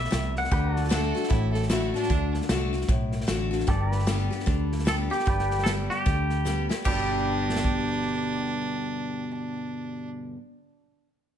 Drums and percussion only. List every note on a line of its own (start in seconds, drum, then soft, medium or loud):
0.05 snare soft
0.12 snare loud
0.12 hi-hat pedal medium
0.36 snare soft
0.44 snare soft
0.51 kick loud
0.51 snare soft
0.76 snare soft
0.84 snare soft
0.91 snare loud
0.91 hi-hat pedal medium
1.16 snare soft
1.23 snare soft
1.31 kick loud
1.31 snare soft
1.54 snare soft
1.63 snare soft
1.70 snare loud
1.70 hi-hat pedal medium
1.95 snare soft
2.03 snare soft
2.10 kick loud
2.10 snare soft
2.34 snare soft
2.42 snare soft
2.49 snare loud
2.49 hi-hat pedal medium
2.73 snare soft
2.81 snare soft
2.88 kick loud
2.88 snare soft
3.12 snare soft
3.21 snare soft
3.28 snare loud
3.28 hi-hat pedal medium
3.52 snare soft
3.60 snare soft
3.67 kick loud
3.67 snare soft
3.92 snare soft
3.99 snare soft
4.07 snare loud
4.07 hi-hat pedal medium
4.32 snare soft
4.40 snare soft
4.47 kick loud
4.47 snare soft
4.72 snare soft
4.79 snare soft
4.87 snare loud
4.87 hi-hat pedal medium
5.12 snare soft
5.19 snare soft
5.27 kick loud
5.27 snare soft
5.39 snare soft
5.51 snare soft
5.59 snare soft
5.66 snare loud
5.66 hi-hat pedal medium
5.90 snare soft
6.06 kick loud
6.06 snare soft
6.30 snare soft
6.45 snare medium
6.45 hi-hat pedal medium
6.70 snare medium
6.85 kick medium
6.85 crash medium
7.49 snare soft
7.56 snare medium
7.64 kick medium